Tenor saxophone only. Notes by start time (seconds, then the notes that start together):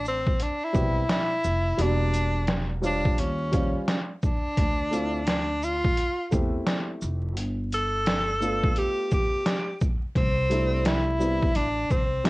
0.08 C4
0.42 D4
0.64 E4
1.11 E4
1.81 D4
2.86 D4
3.20 C#4
4.25 D4
5.29 D4
5.64 F4
7.74 A4
8.78 G4
9.13 G4
10.17 C4
10.87 E4
11.56 D4
11.91 C4
12.26 E4